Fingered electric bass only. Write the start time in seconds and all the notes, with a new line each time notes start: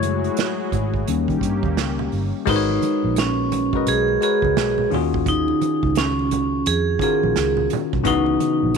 Already playing: F#1
0.73 G#1
1.08 D#2
1.29 D#3
1.42 G2
1.63 D#2
1.78 C#2
2.13 G1
2.48 G#1
3.04 A#1
3.87 B1
4.43 C#2
4.57 B1
4.92 D#2
5.84 C#2
6.67 F2
7.23 A#1
7.37 C#2
7.94 C2
8.05 C#2
8.63 A#1